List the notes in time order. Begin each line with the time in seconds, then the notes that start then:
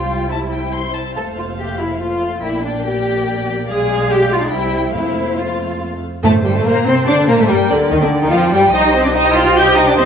Already playing: C2 G3 F4 C5 G5
0.30 E4 A5
0.53 G5
0.74 C6
0.95 A5
1.16 F1 A3 A4 F5
1.38 F4
1.59 G4
1.80 E4
2.01 F4
2.43 A#1 A#3 E4 D5 G5
2.64 D4
2.86 G4
3.69 B1 G#3 G#4 F5
4.10 G4
4.31 F4
4.41 D4
4.51 C2 G3 E4 C5 G5
4.94 F2 A3 E4 F5
5.38 F4
6.23 G2 A2 A3 C5 A5
6.45 G2 G3 G5
6.55 A2 A3 A5
6.65 A#2 A#3 A#5
6.86 C3 C4 C6
7.07 D3 D4 D6
7.28 A#2 A#3 A#5
7.38 A2 A3 A5
7.48 G2 G3 A#4 G5
7.69 D2 D3 D4 D5
7.90 D#2 D#3 D#4 D#5 G5
8.01 D2 D3 D4 D5
8.21 D#2 D#3 D#4 D#5
8.30 F2 F3 F4 F5
8.52 G2 G3 G5
8.72 C2 D#4 G4 C5 D#5 D#6
8.82 G4 D#5 G5
8.93 C4 D#4 C5 D#5 C6
9.03 D4 G4 D#5 G5 D6
9.14 D#4 C5 D#5 G5 D#6
9.24 G4 D#5 G5
9.35 D#4 F4 C5 D#5 F6
9.44 G4 D#5 G5
9.56 D#4 G4 C5 D#5 G6
9.66 G4 D#5 G5
9.76 D#4 C5 D#5 D#6
9.86 D4 G4 D#5 G5 D6
9.96 D#2 C4 D#4 C5 D#5 C6